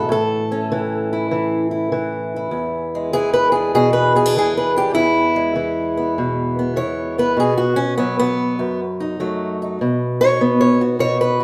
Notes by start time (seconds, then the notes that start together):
Already playing: E3 E4 A4
0.09 A2 A4
0.52 C#4
0.72 E3
1.13 E4
1.31 E3
1.71 E4
1.92 E3
2.36 E4
2.51 E2
2.95 G#3
3.13 E3 G#4
3.33 B4
3.52 D4 G#4
3.75 B2 G#4
3.93 B4
4.15 B3 G#4
4.26 D4
4.36 E3 G#4
4.57 B4
4.76 D4 G4
4.93 E2 E4
5.36 G#3
5.56 E3
5.97 B3
6.18 B2
6.59 B3
6.76 E3 C#5
7.18 B3 B4
7.37 B2 G#4
7.58 F#4
7.76 C#4
7.98 F#3 B3
8.19 B3
8.59 F#2
9.00 D#4
9.20 F#3 A3
9.62 D#4
9.81 B2
10.21 D#4 C#5
10.41 B3
10.61 C#5
10.81 F#4
10.99 B2 C#5
11.21 B4
11.40 F#4